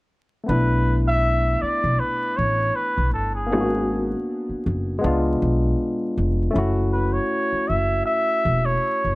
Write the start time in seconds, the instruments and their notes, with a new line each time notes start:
0.44 tine electric piano A3 B3
0.49 upright bass B1, tine electric piano D4 E4, muted trumpet B4
1.08 muted trumpet E5
1.62 muted trumpet D5, muted upright bass stroke
1.84 upright bass B1
2.00 muted trumpet B4
2.37 upright bass A1, muted trumpet C#5
2.76 muted trumpet B4
2.98 upright bass B1
3.14 upright bass G1, muted trumpet A4
3.35 muted trumpet G#4
3.46 tine electric piano A#3 B3
3.52 upright bass G#1, tine electric piano D4 E4
3.61 tine electric piano F#4
4.49 muted upright bass stroke
4.66 upright bass F#1
4.99 tine electric piano G#3 B3
5.04 upright bass C#2, tine electric piano D4 F4
5.42 upright bass B1
6.18 upright bass F1
6.51 tine electric piano A3 C#4
6.56 upright bass F#1, tine electric piano E4 F#4
6.93 muted trumpet B4
7.13 muted trumpet C#5
7.53 muted upright bass stroke
7.68 upright bass F#1, muted trumpet E5
8.06 muted trumpet E5
8.45 upright bass E1
8.66 muted trumpet C#5
9.05 upright bass F#1